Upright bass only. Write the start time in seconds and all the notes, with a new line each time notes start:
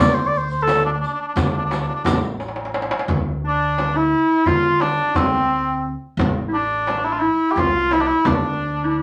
0.00 D2
1.36 D2
2.04 A1
3.08 D2
4.46 D3
5.15 D2
6.17 A1
7.56 C2
8.25 D2